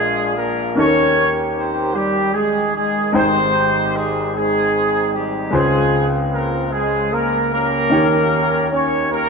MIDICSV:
0, 0, Header, 1, 3, 480
1, 0, Start_track
1, 0, Key_signature, -4, "major"
1, 0, Tempo, 793651
1, 465, Time_signature, 6, 3, 24, 8
1, 5619, End_track
2, 0, Start_track
2, 0, Title_t, "Horn section"
2, 0, Program_c, 0, 61
2, 0, Note_on_c, 0, 56, 76
2, 0, Note_on_c, 0, 62, 57
2, 0, Note_on_c, 0, 65, 60
2, 0, Note_on_c, 0, 68, 82
2, 198, Note_off_c, 0, 56, 0
2, 198, Note_off_c, 0, 68, 0
2, 223, Note_on_c, 0, 58, 68
2, 223, Note_on_c, 0, 70, 74
2, 442, Note_off_c, 0, 65, 0
2, 443, Note_off_c, 0, 62, 0
2, 464, Note_off_c, 0, 58, 0
2, 464, Note_off_c, 0, 70, 0
2, 467, Note_on_c, 0, 61, 91
2, 467, Note_on_c, 0, 73, 99
2, 473, Note_on_c, 0, 67, 74
2, 475, Note_on_c, 0, 70, 70
2, 785, Note_off_c, 0, 61, 0
2, 785, Note_off_c, 0, 73, 0
2, 939, Note_on_c, 0, 60, 64
2, 939, Note_on_c, 0, 72, 69
2, 1166, Note_off_c, 0, 60, 0
2, 1166, Note_off_c, 0, 67, 0
2, 1166, Note_off_c, 0, 72, 0
2, 1167, Note_off_c, 0, 70, 0
2, 1179, Note_on_c, 0, 55, 70
2, 1179, Note_on_c, 0, 67, 76
2, 1410, Note_on_c, 0, 56, 64
2, 1410, Note_on_c, 0, 68, 70
2, 1423, Note_off_c, 0, 55, 0
2, 1423, Note_off_c, 0, 67, 0
2, 1654, Note_off_c, 0, 56, 0
2, 1654, Note_off_c, 0, 68, 0
2, 1661, Note_on_c, 0, 56, 61
2, 1661, Note_on_c, 0, 68, 67
2, 1887, Note_off_c, 0, 56, 0
2, 1887, Note_off_c, 0, 68, 0
2, 1897, Note_on_c, 0, 60, 85
2, 1897, Note_on_c, 0, 72, 92
2, 1907, Note_on_c, 0, 67, 65
2, 1909, Note_on_c, 0, 63, 65
2, 2382, Note_off_c, 0, 60, 0
2, 2382, Note_off_c, 0, 72, 0
2, 2383, Note_on_c, 0, 56, 69
2, 2383, Note_on_c, 0, 68, 75
2, 2603, Note_off_c, 0, 67, 0
2, 2604, Note_off_c, 0, 63, 0
2, 2619, Note_off_c, 0, 56, 0
2, 2619, Note_off_c, 0, 68, 0
2, 2626, Note_on_c, 0, 56, 70
2, 2626, Note_on_c, 0, 68, 76
2, 2636, Note_on_c, 0, 60, 61
2, 2636, Note_on_c, 0, 63, 53
2, 3082, Note_off_c, 0, 56, 0
2, 3082, Note_off_c, 0, 68, 0
2, 3103, Note_on_c, 0, 55, 62
2, 3103, Note_on_c, 0, 67, 68
2, 3327, Note_off_c, 0, 60, 0
2, 3327, Note_off_c, 0, 63, 0
2, 3342, Note_on_c, 0, 56, 78
2, 3342, Note_on_c, 0, 68, 85
2, 3345, Note_off_c, 0, 55, 0
2, 3345, Note_off_c, 0, 67, 0
2, 3350, Note_on_c, 0, 65, 62
2, 3352, Note_on_c, 0, 60, 66
2, 3663, Note_off_c, 0, 56, 0
2, 3663, Note_off_c, 0, 68, 0
2, 3823, Note_on_c, 0, 58, 65
2, 3823, Note_on_c, 0, 70, 70
2, 4044, Note_off_c, 0, 65, 0
2, 4045, Note_off_c, 0, 60, 0
2, 4048, Note_off_c, 0, 58, 0
2, 4048, Note_off_c, 0, 70, 0
2, 4062, Note_on_c, 0, 56, 70
2, 4062, Note_on_c, 0, 68, 76
2, 4304, Note_off_c, 0, 56, 0
2, 4304, Note_off_c, 0, 68, 0
2, 4306, Note_on_c, 0, 58, 62
2, 4306, Note_on_c, 0, 70, 67
2, 4544, Note_off_c, 0, 58, 0
2, 4544, Note_off_c, 0, 70, 0
2, 4551, Note_on_c, 0, 58, 72
2, 4551, Note_on_c, 0, 70, 78
2, 4559, Note_on_c, 0, 67, 58
2, 4561, Note_on_c, 0, 61, 59
2, 5245, Note_off_c, 0, 58, 0
2, 5245, Note_off_c, 0, 70, 0
2, 5249, Note_off_c, 0, 67, 0
2, 5250, Note_off_c, 0, 61, 0
2, 5273, Note_on_c, 0, 61, 66
2, 5273, Note_on_c, 0, 73, 71
2, 5506, Note_on_c, 0, 58, 74
2, 5506, Note_on_c, 0, 70, 80
2, 5510, Note_off_c, 0, 61, 0
2, 5510, Note_off_c, 0, 73, 0
2, 5513, Note_on_c, 0, 61, 51
2, 5516, Note_on_c, 0, 67, 58
2, 5619, Note_off_c, 0, 58, 0
2, 5619, Note_off_c, 0, 61, 0
2, 5619, Note_off_c, 0, 67, 0
2, 5619, Note_off_c, 0, 70, 0
2, 5619, End_track
3, 0, Start_track
3, 0, Title_t, "Grand piano"
3, 0, Program_c, 1, 0
3, 0, Control_c, 1, 64, 127
3, 0, Note_on_c, 1, 34, 51
3, 0, Note_on_c, 1, 46, 51
3, 0, Note_on_c, 1, 56, 48
3, 0, Note_on_c, 1, 62, 47
3, 0, Note_on_c, 1, 65, 50
3, 0, Note_on_c, 1, 70, 56
3, 435, Note_off_c, 1, 56, 0
3, 438, Note_off_c, 1, 62, 0
3, 440, Note_off_c, 1, 46, 0
3, 441, Note_off_c, 1, 34, 0
3, 442, Note_off_c, 1, 65, 0
3, 455, Note_on_c, 1, 58, 45
3, 463, Note_on_c, 1, 61, 47
3, 466, Note_off_c, 1, 70, 0
3, 467, Note_on_c, 1, 39, 46
3, 467, Note_on_c, 1, 51, 50
3, 472, Note_on_c, 1, 63, 44
3, 474, Control_c, 1, 64, 0
3, 479, Note_on_c, 1, 69, 47
3, 511, Note_off_c, 1, 69, 0
3, 519, Note_on_c, 1, 70, 53
3, 569, Control_c, 1, 64, 127
3, 1877, Note_off_c, 1, 58, 0
3, 1881, Note_off_c, 1, 61, 0
3, 1883, Note_off_c, 1, 39, 0
3, 1883, Note_off_c, 1, 51, 0
3, 1886, Note_off_c, 1, 63, 0
3, 1890, Note_on_c, 1, 56, 47
3, 1896, Note_on_c, 1, 63, 44
3, 1899, Note_on_c, 1, 32, 48
3, 1899, Note_on_c, 1, 44, 48
3, 1906, Note_on_c, 1, 79, 49
3, 1909, Note_off_c, 1, 70, 0
3, 1912, Note_on_c, 1, 72, 54
3, 1915, Control_c, 1, 64, 0
3, 2006, Control_c, 1, 64, 127
3, 3314, Note_off_c, 1, 56, 0
3, 3317, Note_off_c, 1, 63, 0
3, 3319, Note_off_c, 1, 32, 0
3, 3319, Note_off_c, 1, 44, 0
3, 3322, Note_off_c, 1, 79, 0
3, 3325, Note_off_c, 1, 72, 0
3, 3330, Note_on_c, 1, 56, 49
3, 3341, Note_on_c, 1, 49, 50
3, 3343, Note_on_c, 1, 37, 52
3, 3346, Note_on_c, 1, 65, 46
3, 3352, Note_on_c, 1, 72, 51
3, 3355, Control_c, 1, 64, 0
3, 3466, Control_c, 1, 64, 127
3, 4754, Note_off_c, 1, 56, 0
3, 4760, Note_off_c, 1, 49, 0
3, 4761, Note_off_c, 1, 37, 0
3, 4762, Note_off_c, 1, 65, 0
3, 4765, Note_off_c, 1, 72, 0
3, 4776, Note_on_c, 1, 58, 53
3, 4784, Note_on_c, 1, 63, 50
3, 4787, Note_on_c, 1, 51, 49
3, 4788, Note_on_c, 1, 39, 49
3, 4792, Note_on_c, 1, 67, 49
3, 4794, Control_c, 1, 64, 0
3, 4799, Note_on_c, 1, 73, 57
3, 4901, Control_c, 1, 64, 127
3, 5619, Note_off_c, 1, 39, 0
3, 5619, Note_off_c, 1, 51, 0
3, 5619, Note_off_c, 1, 58, 0
3, 5619, Note_off_c, 1, 63, 0
3, 5619, Note_off_c, 1, 67, 0
3, 5619, Note_off_c, 1, 73, 0
3, 5619, End_track
0, 0, End_of_file